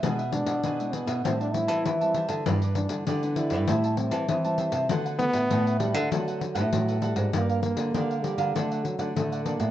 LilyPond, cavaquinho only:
\new Staff \with { instrumentName = "Cavaquinho" } { \time 4/4 \key d \mixolydian \tempo 4 = 99 <d' gis' b' e''>16 <gis' b' e''>16 r8 <d' gis' b' e''>16 <gis' b' e''>16 <d' gis' b' e''>16 <gis' b' e''>16 <g' c'' e'' a''>16 <c'' e'' a''>16 r16 <c'' e'' a''>8 <c'' e'' a''>16 <g' c'' e'' a''>16 <c'' e'' a''>16 | <e' g' b' d''>16 <g' b' d''>16 r8 <e' g' b' d''>16 <g' b' d''>16 <e' g' b' d''>16 <g' b' d''>16 <g' c'' e'' a''>16 <c'' e'' a''>16 r16 <c'' e'' a''>8 <c'' e'' a''>16 <g' c'' e'' a''>16 <c'' e'' a''>16 | <d' a' b' fis''>16 <a' b' fis''>16 r8 <d' a' b' fis''>16 <a' b' fis''>16 <d' a' b' fis''>16 <a' b' fis''>16 <d' a' b' fis''>16 <a' b' fis''>16 r16 <a' b' fis''>8 <a' b' fis''>16 <d' a' b' fis''>16 <a' b' fis''>16 | \key g \minor <g' bes' d'' f''>16 <bes' d'' f''>16 r8 <g' bes' d'' f''>16 <bes' d'' f''>16 <g' bes' d'' f''>16 <bes' d'' f''>16 <d' a' d'' fis''>16 <a' d'' fis''>16 r16 <a' d'' fis''>8 <a' d'' fis''>16 <d' a' d'' fis''>16 <a' d'' fis''>16 | }